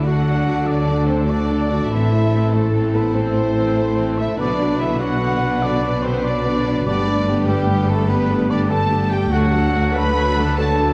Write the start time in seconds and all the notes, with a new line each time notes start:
Already playing: D2 D3 A3 D4 A4
0.04 A3 F#4 D5 F#5
0.24 F#3 D4 A4
0.45 A3 F#4 D5
0.64 F#3 D4 A4 D5
0.86 A3 F#4 D5
1.06 F#3 C4 D4 A4 C5
1.26 A3 D4 F#4 D5
1.30 D5
1.49 F#3 D4 A4
1.69 A3 F#4 D5
1.89 A1 A2 E3 C4 E4 A4 E5
2.11 A3 E4 C5
2.32 E3 C4 A4
2.51 A3 E4 A4 C5
2.72 E3 C4 A4
2.93 A3 B3 E4 B4 C5
3.14 E3 C4 A4 C5
3.35 A3 E4 C5
3.55 E3 C4 A4
3.76 A3 E4 C5
3.98 E3 C4 A4
4.17 A3 E4 C5 E5
4.37 B1 B2 D3 B3 D4 F#4 B4 D5
4.42 F#3
4.60 F#3 D4 B4
4.78 D3 B3 E4 F#4 E5
4.82 B3
5.00 F#3 D4 F#4 B4 F#5
5.20 D3 B3 F#4
5.42 F#3 D4 B4
5.62 D3 B3 D4 F#4 D5
5.83 F#3 D4 B4
6.02 D3 B3 C4 F#4 C5
6.22 F#3 D4 D5
6.26 B4
6.45 D3 B3 F#4
6.65 F#3 D4 B4
6.86 G1 G2 G3 A3 B3 D4 G4 D5
7.06 G3 A3 D4 A4
7.28 G3 B3 G4
7.46 G3 A3 G4
7.50 D4 A4
7.68 G3 B3 G4
7.87 G3 A3 D4 A4
8.07 G3 B3 G4 B4
8.29 G3 A3 D4 A4
8.48 G3 B3 D4 G4 D5
8.69 G3 A3 D4 A4 A5
8.91 G3 B3 G4
9.10 G3 A3 D4 G4 A4 G5
9.30 D2 F#3 A3 D4 F#4 A4 F#5
9.52 F#3 A3 D4 A4
9.74 F#3 A3 F#4
9.93 F#3 A3 D4 A4 B4 B5
9.97 B4
10.16 F#3 A3 F#4
10.36 F#3 A3 D4 A4
10.57 F#3 A3 F#4 A4 A5
10.78 F#3 A3 D4 A4